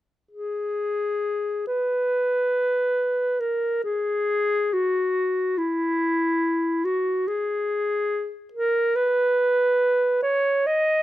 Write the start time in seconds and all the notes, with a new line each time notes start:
0.31 G#4
1.67 B4
3.40 A#4
3.84 G#4
4.73 F#4
5.58 E4
6.85 F#4
7.27 G#4
8.53 A#4
8.96 B4
10.22 C#5
10.66 D#5